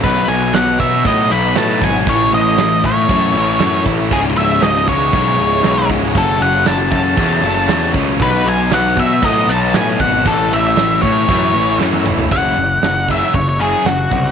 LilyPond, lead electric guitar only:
\new Staff \with { instrumentName = "Lead electric guitar" } { \time 4/4 \key fis \dorian \tempo 4 = 117 b'8 gis''8 fis''8 e''8 dis''8 b''8 a''8 gis''8 | cis''8 dis''4 cis''2 r8 | gis'8 e''8 dis''8 cis''2 r8 | a'8 fis''8 a''8 a''2 r8 |
b'8 gis''8 fis''8 e''8 dis''8 a''8 gis''8 fis''8 | a'8 e''4 cis''4. r4 | fis''4. e''8 cis''16 cis''16 gis'8 fis'4 | }